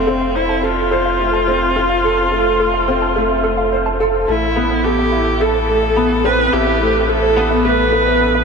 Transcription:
0.00 4.25 F1 medium
0.00 0.37 C4 medium
0.07 0.34 C4 medium
0.07 0.14 A4 medium
0.21 0.31 F5 medium
0.36 0.65 E4 medium
0.36 0.52 C5 medium
0.49 0.53 A5 medium
0.63 3.72 F4 medium
0.63 0.67 A4 medium
0.63 0.80 A4 medium
0.91 0.98 A4 medium
0.91 1.08 C5 medium
1.05 1.15 F5 medium
1.20 1.47 A3 medium
1.33 1.38 A5 medium
1.48 1.74 C4 medium
1.48 1.52 A4 medium
1.76 2.03 F4 medium
1.76 1.82 A4 medium
1.90 1.99 F5 medium
2.04 2.31 A4 medium
2.18 2.22 A5 medium
2.32 2.48 A3 medium
2.32 2.36 A4 medium
2.60 2.87 A3 medium
2.60 2.66 A4 medium
2.74 2.84 F5 medium
2.88 3.15 C4 medium
3.02 3.06 A5 medium
3.16 3.32 A3 medium
3.16 3.20 A4 medium
3.44 3.71 A3 medium
3.44 3.50 A4 medium
3.57 3.67 F5 medium
3.72 3.99 C5 medium
3.86 3.90 A5 medium
4.00 4.04 A4 medium
4.00 4.16 A4 medium
4.28 6.49 A1 medium
4.28 4.44 A3 medium
4.28 4.86 E4 medium
4.28 4.32 A4 medium
4.56 4.83 B3 medium
4.56 4.63 A4 loud
4.70 4.80 C5 medium
4.84 5.42 G4 medium
4.84 5.00 A4 medium
4.99 5.02 E5 medium
5.12 5.28 E4 medium
5.12 5.16 A4 medium
5.40 5.47 A4 medium
5.40 5.56 A4 medium
5.40 6.27 A4 medium
5.55 5.64 C5 medium
5.68 5.95 A3 medium
5.83 5.86 E5 medium
5.96 6.23 B3 medium
5.96 6.00 A4 medium
6.24 6.51 C4 medium
6.24 6.31 A4 medium
6.24 6.55 B4 loud
6.39 6.48 C5 medium
6.53 8.44 A1 loud
6.53 6.79 E4 medium
6.53 7.11 G4 medium
6.67 6.71 E5 medium
6.81 6.97 A3 medium
6.81 6.85 A4 medium
7.09 7.35 A3 medium
7.09 7.15 A4 medium
7.09 7.65 A4 medium
7.22 7.32 C5 medium
7.36 7.63 B3 medium
7.50 7.54 E5 medium
7.65 7.81 A3 medium
7.65 7.69 A4 medium
7.65 8.44 B4 medium
7.93 8.19 B3 medium
7.93 7.99 A4 medium
8.07 8.16 C5 medium
8.21 8.37 A4 medium
8.35 8.39 E5 medium

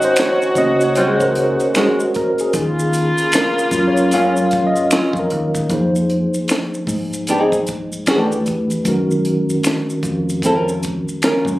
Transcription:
0.00 2.10 D#3 medium
0.00 2.10 C#4 medium
0.00 2.10 F#4 medium
0.00 0.19 C#5 loud
0.00 0.58 D#5 medium
0.00 closed hi-hat soft
0.00 maracas soft
0.04 0.18 C5 loud
0.16 0.58 C#5 loud
0.16 finger snap medium
0.16 snare loud
0.16 closed hi-hat medium
0.16 maracas medium
0.42 maracas soft
0.55 1.56 C#2 medium
0.55 1.13 A#3 medium
0.55 1.13 C#4 medium
0.55 1.14 F#4 medium
0.55 0.83 D#5 loud
0.55 kick medium
0.55 closed hi-hat medium
0.55 maracas soft
0.81 0.89 C#5 medium
0.81 closed hi-hat soft
0.81 maracas medium
0.95 1.21 G#3 medium
0.95 1.22 C#4 medium
0.95 1.22 F#4 medium
0.95 1.22 C5 loud
0.95 closed hi-hat medium
0.95 maracas medium
1.20 1.37 A#4 medium
1.20 kick medium
1.20 maracas soft
1.35 1.77 G#4 medium
1.35 closed hi-hat medium
1.60 closed hi-hat soft
1.60 maracas soft
1.75 1.95 G#3 medium
1.75 1.95 C#4 medium
1.75 2.16 F#4 medium
1.75 1.96 F#4 medium
1.75 finger snap medium
1.75 snare loud
1.75 closed hi-hat medium
1.75 maracas medium
2.00 maracas soft
2.14 2.41 A#4 medium
2.14 kick medium
2.14 closed hi-hat medium
2.38 2.77 G#4 medium
2.38 closed hi-hat soft
2.38 maracas medium
2.53 3.10 D#2 loud
2.53 5.26 C#3 medium
2.53 5.26 A#3 medium
2.53 5.26 F4 medium
2.53 kick loud
2.53 closed hi-hat medium
2.53 maracas medium
2.79 maracas soft
2.93 closed hi-hat medium
2.93 maracas medium
3.18 closed hi-hat soft
3.18 maracas soft
3.32 3.88 A#4 medium
3.32 finger snap medium
3.32 snare loud
3.32 closed hi-hat medium
3.32 maracas medium
3.59 maracas soft
3.71 4.72 F#2 medium
3.71 4.87 F#3 medium
3.71 4.87 C#4 medium
3.71 4.88 F4 medium
3.71 kick medium
3.71 closed hi-hat medium
3.71 maracas medium
3.88 4.14 C#5 medium
3.97 maracas medium
4.11 4.32 F#3 medium
4.11 4.33 C#4 medium
4.11 4.33 F4 medium
4.11 4.67 F5 loud
4.11 closed hi-hat medium
4.11 maracas medium
4.36 maracas soft
4.51 kick medium
4.51 closed hi-hat medium
4.67 5.20 D#5 medium
4.75 closed hi-hat soft
4.75 maracas soft
4.91 5.11 F#3 medium
4.91 5.11 C#4 medium
4.91 5.12 F4 medium
4.91 finger snap medium
4.91 snare loud
4.91 closed hi-hat medium
4.91 maracas medium
5.13 5.27 F2 medium
5.13 kick medium
5.13 maracas soft
5.19 5.55 A#4 medium
5.30 5.65 D#2 medium
5.30 closed hi-hat medium
5.54 kick loud
5.54 closed hi-hat soft
5.54 maracas medium
5.69 6.26 F2 medium
5.69 8.02 F3 medium
5.69 8.02 A#3 soft
5.69 8.03 D#4 medium
5.69 8.03 G#4 soft
5.69 kick loud
5.69 closed hi-hat medium
5.69 maracas medium
5.73 8.04 C5 medium
5.96 maracas soft
6.10 closed hi-hat soft
6.34 maracas soft
6.48 finger snap medium
6.48 snare loud
6.48 closed hi-hat medium
6.48 maracas medium
6.74 maracas soft
6.87 7.88 G#2 medium
6.87 kick medium
6.87 open hi-hat soft
6.87 maracas soft
7.13 closed hi-hat soft
7.13 maracas soft
7.27 7.53 C4 medium
7.27 7.54 D#4 medium
7.27 7.54 G#4 medium
7.27 closed hi-hat medium
7.27 maracas medium
7.52 kick medium
7.52 maracas soft
7.67 kick medium
7.67 closed hi-hat medium
7.67 maracas soft
7.92 maracas soft
8.06 8.86 E2 loud
8.06 8.86 E3 medium
8.06 8.86 A3 medium
8.06 8.32 D4 medium
8.06 8.86 D4 medium
8.06 8.33 G4 medium
8.06 8.86 G4 medium
8.06 8.33 A4 medium
8.06 8.16 A#4 medium
8.06 finger snap medium
8.06 snare loud
8.06 closed hi-hat medium
8.06 maracas medium
8.15 8.90 B4 medium
8.32 maracas soft
8.46 kick medium
8.46 closed hi-hat medium
8.46 maracas soft
8.70 closed hi-hat soft
8.70 maracas soft
8.84 9.42 F#2 medium
8.84 11.59 D#3 medium
8.84 11.59 G#3 medium
8.84 11.59 C#4 medium
8.84 11.59 F#4 medium
8.84 kick loud
8.84 closed hi-hat medium
8.84 maracas medium
8.88 11.59 A#4 medium
9.11 maracas soft
9.25 closed hi-hat medium
9.50 maracas soft
9.63 finger snap medium
9.63 snare loud
9.63 closed hi-hat medium
9.63 maracas medium
9.90 maracas soft
10.03 11.03 F2 medium
10.03 kick medium
10.03 closed hi-hat medium
10.03 maracas soft
10.29 closed hi-hat soft
10.29 maracas soft
10.42 10.69 C#4 medium
10.42 10.69 F4 medium
10.42 10.70 A#4 medium
10.42 kick medium
10.42 closed hi-hat medium
10.42 maracas medium
10.69 maracas soft
10.83 kick medium
10.83 closed hi-hat medium
10.83 maracas soft
11.08 maracas soft
11.22 11.43 C#4 medium
11.22 11.43 F4 medium
11.22 11.43 A#4 medium
11.22 finger snap medium
11.22 snare loud
11.22 closed hi-hat medium
11.22 maracas medium
11.45 11.59 F#2 medium
11.45 kick medium
11.45 maracas soft

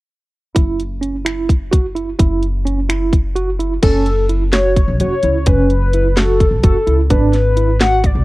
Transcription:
0.55 2.16 F#1 medium
0.55 0.81 E4 medium
0.55 kick medium
0.55 closed hi-hat medium
0.80 closed hi-hat soft
1.01 1.15 C#4 soft
1.01 closed hi-hat soft
1.25 1.52 E4 medium
1.25 finger snap medium
1.25 closed hi-hat medium
1.49 kick medium
1.49 closed hi-hat soft
1.71 1.85 F#4 medium
1.71 kick medium
1.71 closed hi-hat medium
1.95 2.08 E4 medium
1.95 closed hi-hat soft
2.19 3.80 F#1 medium
2.19 2.45 E4 medium
2.19 kick medium
2.19 closed hi-hat medium
2.43 closed hi-hat soft
2.65 2.79 C#4 medium
2.65 closed hi-hat medium
2.89 3.15 E4 medium
2.89 finger snap medium
2.89 closed hi-hat medium
3.13 kick medium
3.13 closed hi-hat soft
3.36 3.49 F#4 medium
3.36 closed hi-hat medium
3.59 3.73 E4 medium
3.59 closed hi-hat soft
3.82 4.89 F#1 medium
3.82 4.09 C#4 medium
3.82 4.26 A4 loud
3.82 kick medium
3.82 closed hi-hat medium
3.82 crash medium
4.06 closed hi-hat soft
4.29 4.43 E4 medium
4.29 closed hi-hat soft
4.53 4.79 F#4 medium
4.53 4.96 C#5 medium
4.53 snare medium
4.53 closed hi-hat medium
4.76 kick medium
4.76 closed hi-hat medium
4.88 4.97 B1 medium
5.00 5.09 F#1 medium
5.00 5.14 F#4 medium
5.00 5.49 C#5 medium
5.00 closed hi-hat medium
5.23 5.48 C#2 medium
5.23 5.37 E4 medium
5.23 closed hi-hat soft
5.46 6.52 F#1 medium
5.46 5.73 C#4 medium
5.46 6.19 B4 medium
5.46 kick medium
5.46 closed hi-hat medium
5.70 closed hi-hat soft
5.93 6.07 E4 medium
5.93 closed hi-hat medium
6.17 6.43 F#4 medium
6.17 6.63 A4 medium
6.17 snare medium
6.17 closed hi-hat medium
6.40 kick medium
6.40 closed hi-hat soft
6.51 6.60 B1 medium
6.63 6.73 F#1 medium
6.63 6.76 F#4 medium
6.63 6.96 A4 medium
6.63 kick medium
6.63 closed hi-hat medium
6.87 7.12 C#2 medium
6.87 7.00 E4 medium
6.87 closed hi-hat soft
7.10 8.17 G#1 medium
7.10 7.37 D4 medium
7.10 7.76 B4 medium
7.10 kick medium
7.10 closed hi-hat medium
7.33 snare soft
7.33 closed hi-hat soft
7.57 7.70 E4 medium
7.57 closed hi-hat medium
7.81 8.07 F#4 medium
7.81 8.07 F#5 loud
7.81 snare medium
7.81 closed hi-hat medium
8.04 8.24 D5 medium
8.04 kick medium
8.04 closed hi-hat soft
8.15 8.24 C#2 medium

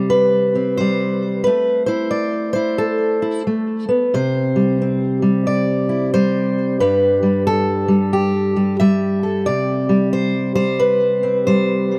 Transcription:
0.00 1.46 C3 medium
0.00 0.79 G3 medium
0.00 0.76 C5 medium
0.10 1.43 B4 medium
0.55 2.78 C4 soft
0.77 1.47 G3 medium
0.77 1.45 C5 medium
1.44 3.46 A3 medium
1.44 1.86 B4 medium
1.86 2.55 E4 medium
1.86 2.52 C5 medium
2.11 3.20 D5 medium
2.53 3.21 E4 medium
2.53 3.46 C5 medium
2.78 4.12 A4 medium
3.22 3.46 E4 soft
3.47 3.88 A3 medium
3.89 4.13 B3 medium
4.14 6.81 C3 medium
4.14 5.89 C5 medium
4.56 5.22 G3 medium
4.82 6.81 C4 soft
5.22 6.14 G3 medium
5.47 6.80 D5 medium
5.89 6.13 E4 soft
6.14 6.80 G3 medium
6.14 6.80 C5 medium
6.80 9.47 G2 medium
6.80 7.22 G3 soft
6.80 8.12 G4 medium
6.80 7.46 B4 medium
7.23 7.88 G3 medium
7.47 8.80 A4 medium
7.88 8.55 G3 medium
8.13 8.79 G4 medium
8.56 8.79 G3 soft
8.80 9.88 G3 medium
8.80 9.46 E5 loud
9.23 9.44 A4 medium
9.46 11.99 C3 medium
9.46 10.12 D5 loud
9.89 10.54 G3 medium
10.13 10.54 C5 medium
10.55 11.47 G3 medium
10.55 11.46 C5 medium
10.79 11.99 B4 medium
11.23 11.99 C4 soft
11.47 11.99 G3 medium
11.47 11.99 C5 medium

